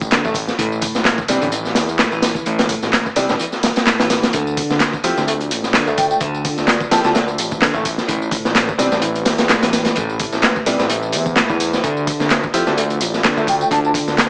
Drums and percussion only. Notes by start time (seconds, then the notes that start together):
0.01 kick, tambourine
0.11 snare, clap, closed hi-hat, tambourine
0.25 kick, tambourine
0.34 kick, closed hi-hat, open hi-hat, tambourine
0.48 snare, tambourine
0.59 kick, closed hi-hat, tambourine
0.72 tambourine
0.81 kick, closed hi-hat, open hi-hat, tambourine
0.95 snare, tambourine
1.05 snare, clap, closed hi-hat, tambourine
1.18 kick, tambourine
1.28 closed hi-hat, open hi-hat, tambourine
1.42 closed hi-hat, tambourine
1.52 closed hi-hat, tambourine
1.65 snare, tambourine
1.75 snare, closed hi-hat, open hi-hat, tambourine
1.89 tambourine
1.99 snare, clap, closed hi-hat, tambourine
2.12 tambourine
2.22 snare, closed hi-hat, open hi-hat, tambourine
2.35 kick, tambourine
2.46 closed hi-hat, tambourine
2.59 snare, closed hi-hat, tambourine
2.69 kick, closed hi-hat, open hi-hat, tambourine
2.82 snare, tambourine
2.93 snare, clap, closed hi-hat, tambourine
3.06 kick, tambourine
3.16 closed hi-hat, open hi-hat, tambourine
3.29 snare, tambourine
3.40 closed hi-hat, tambourine
3.52 snare, tambourine
3.63 snare, closed hi-hat, open hi-hat, tambourine
3.76 snare, closed hi-hat, tambourine
3.86 snare, clap, closed hi-hat, tambourine
4.00 snare, closed hi-hat, tambourine
4.10 snare, closed hi-hat, open hi-hat, tambourine
4.23 snare, closed hi-hat, tambourine
4.33 kick, closed hi-hat, tambourine
4.47 tambourine
4.57 kick, closed hi-hat, open hi-hat, tambourine
4.70 snare, tambourine
4.80 snare, clap, closed hi-hat, tambourine
4.93 kick, tambourine
5.04 closed hi-hat, open hi-hat, tambourine
5.17 snare, tambourine
5.28 closed hi-hat, tambourine
5.40 closed hi-hat, tambourine
5.51 closed hi-hat, open hi-hat, tambourine
5.63 snare, tambourine
5.74 snare, clap, closed hi-hat, tambourine
5.87 tambourine
5.97 kick, closed hi-hat, open hi-hat, tambourine
6.11 tambourine
6.20 kick, closed hi-hat, tambourine
6.34 tambourine
6.45 kick, closed hi-hat, open hi-hat, tambourine
6.57 snare, tambourine
6.68 snare, clap, closed hi-hat, tambourine
6.81 kick, tambourine
6.91 snare, closed hi-hat, open hi-hat, tambourine
7.04 snare, tambourine
7.15 snare, closed hi-hat, tambourine
7.28 tambourine
7.38 closed hi-hat, open hi-hat, tambourine
7.51 kick, tambourine
7.62 snare, clap, closed hi-hat, tambourine
7.74 kick, tambourine
7.85 kick, closed hi-hat, open hi-hat, tambourine
7.98 snare, tambourine
8.08 kick, closed hi-hat, tambourine
8.22 tambourine
8.31 kick, closed hi-hat, open hi-hat, tambourine
8.45 snare, tambourine
8.55 snare, clap, closed hi-hat, tambourine
8.69 kick, tambourine
8.79 closed hi-hat, open hi-hat, tambourine
8.92 snare, tambourine
9.02 closed hi-hat, tambourine
9.15 closed hi-hat, tambourine
9.25 snare, closed hi-hat, open hi-hat, tambourine
9.38 snare, closed hi-hat, tambourine
9.49 snare, clap, closed hi-hat, tambourine
9.62 snare, closed hi-hat, tambourine
9.73 snare, closed hi-hat, open hi-hat, tambourine
9.85 snare, closed hi-hat, tambourine
9.96 kick, closed hi-hat, tambourine
10.09 tambourine
10.20 kick, closed hi-hat, open hi-hat, tambourine
10.32 snare, tambourine
10.42 snare, clap, closed hi-hat, tambourine
10.56 kick, tambourine
10.66 closed hi-hat, open hi-hat, tambourine
10.79 snare, tambourine
10.89 closed hi-hat, tambourine
11.03 tambourine
11.12 closed hi-hat, open hi-hat, tambourine
11.26 kick, tambourine
11.36 snare, clap, closed hi-hat, tambourine
11.50 kick, tambourine
11.60 closed hi-hat, open hi-hat, tambourine
11.73 snare, tambourine
11.84 kick, closed hi-hat, tambourine
11.97 tambourine
12.07 kick, closed hi-hat, open hi-hat, tambourine
12.20 snare, tambourine
12.30 snare, clap, closed hi-hat, tambourine
12.43 kick, tambourine
12.54 closed hi-hat, open hi-hat, tambourine
12.67 snare, tambourine
12.77 closed hi-hat, tambourine
12.90 closed hi-hat, tambourine
13.01 closed hi-hat, open hi-hat, tambourine
13.14 snare, tambourine
13.24 snare, clap, closed hi-hat, tambourine
13.38 tambourine
13.47 kick, closed hi-hat, open hi-hat, tambourine
13.61 tambourine
13.71 kick, closed hi-hat, tambourine
13.85 tambourine
13.94 kick, closed hi-hat, open hi-hat, tambourine
14.08 snare, tambourine
14.18 snare, clap, closed hi-hat, tambourine